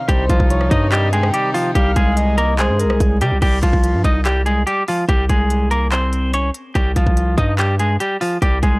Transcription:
0.08 808-style bass C2, string section C3 D#3 D#4, clean electric guitar G3 G4, soft synth lead C5, kick, closed hi-hat
0.29 808-style bass C2, clean electric guitar F3 F4, kick, closed hi-hat
0.40 808-style bass C2, kick
0.50 soft synth lead C#5, closed hi-hat
0.61 cross-stick
0.71 808-style bass G2, clean electric guitar D#4 D#5, kick, closed hi-hat
0.92 clean electric guitar G3 G4, soft synth lead D#5, clap, closed hi-hat
1.13 clean electric guitar G#3 G#4, soft synth lead G5, closed hi-hat
1.23 cross-stick
1.34 clean electric guitar G3 G4, closed hi-hat
1.54 clean electric guitar F3 F4, open hi-hat
1.75 808-style bass C2, clean electric guitar G3 G4, soft synth lead F5, kick, closed hi-hat
1.96 808-style bass C2, clean electric guitar G#3 G#4, kick, closed hi-hat
2.17 soft synth lead D#5, closed hi-hat
2.38 clean electric guitar A#3 A#4, closed hi-hat
2.59 clean electric guitar G#3 G#4, soft synth lead C5, clap, closed hi-hat
2.69 808-style bass G2
2.79 soft synth lead A#4, closed hi-hat
2.85 808-style bass C2
2.90 cross-stick
3.00 808-style bass C2, kick, closed hi-hat
3.21 808-style bass C3, clean electric guitar G3 G4, closed hi-hat
3.31 808-style bass C2
3.42 808-style bass C2, clean electric guitar G3 G4, kick, closed hi-hat, crash
3.63 808-style bass C2, clean electric guitar F3 F4, kick, closed hi-hat
3.73 808-style bass C2, kick
3.84 closed hi-hat
3.94 808-style bass G2
4.04 808-style bass C2, clean electric guitar D#4 D#5, kick, closed hi-hat
4.25 clean electric guitar G3 G4, clap, closed hi-hat
4.46 clean electric guitar G#3 G#4, closed hi-hat
4.67 clean electric guitar G3 G4, closed hi-hat
4.88 clean electric guitar F3 F4, open hi-hat
5.09 808-style bass C2, clean electric guitar G3 G4, kick, closed hi-hat
5.29 808-style bass C2, clean electric guitar G#3 G#4, kick, closed hi-hat
5.50 closed hi-hat
5.71 clean electric guitar A#3 A#4, closed hi-hat
5.92 clean electric guitar C4 C5, clap, closed hi-hat
6.13 closed hi-hat
6.34 clean electric guitar C#4 C#5, closed hi-hat
6.54 closed hi-hat
6.75 808-style bass C2, clean electric guitar G3 G4, kick, closed hi-hat
6.96 808-style bass C2, clean electric guitar F3 F4, kick, closed hi-hat
7.07 808-style bass C2, kick
7.17 closed hi-hat
7.38 808-style bass G2, clean electric guitar D#4 D#5, kick, closed hi-hat
7.59 clean electric guitar G3 G4, clap, closed hi-hat
7.79 clean electric guitar G#3 G#4, closed hi-hat
8.00 clean electric guitar G3 G4, closed hi-hat
8.21 clean electric guitar F3 F4, open hi-hat
8.42 808-style bass C2, clean electric guitar G3 G4, kick, closed hi-hat
8.63 808-style bass C2, clean electric guitar G#3 G#4, kick, closed hi-hat

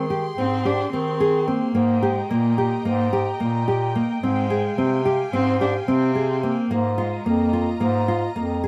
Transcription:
Already playing: bass clarinet D#3, string section G#4 G5 C6
0.10 nylon-string guitar G4
0.37 bass clarinet G#2, nylon-string guitar C4, cello C4
0.65 cello D4, nylon-string guitar G4
0.92 bass clarinet D#3, cello C4, nylon-string guitar C4
1.20 nylon-string guitar G#4
1.48 cello A#3, nylon-string guitar C4
1.74 bass clarinet G#2, nylon-string guitar A#3, string section D#5 G5 A#5
2.03 cello G#3, nylon-string guitar G4
2.30 bass clarinet A#2, nylon-string guitar A#3, cello A#3
2.58 nylon-string guitar G4
2.85 bass clarinet G#2, nylon-string guitar A#3
3.13 nylon-string guitar G4
3.40 bass clarinet A#2, nylon-string guitar A#3
3.68 nylon-string guitar G4
3.95 nylon-string guitar A#3
4.23 bass clarinet G#2, cello G#3, nylon-string guitar C4, string section F5 G#5
4.50 nylon-string guitar G#4
4.78 bass clarinet C3, nylon-string guitar C4
5.05 nylon-string guitar G4
5.33 bass clarinet G#2, nylon-string guitar C4, cello C4
5.61 cello D4, nylon-string guitar G4
5.87 bass clarinet C3, nylon-string guitar C4, cello C4
6.15 nylon-string guitar G#4
6.42 cello A#3, nylon-string guitar C4
6.69 bass clarinet G#2, nylon-string guitar A#3, string section F4 D#5 A#5
6.97 cello G#3, nylon-string guitar F4
7.25 bass clarinet F2, cello A#3, nylon-string guitar A#3
7.53 nylon-string guitar F4
7.80 bass clarinet G#2, nylon-string guitar A#3
8.08 nylon-string guitar F4
8.35 bass clarinet F2, nylon-string guitar A#3
8.64 nylon-string guitar G#4

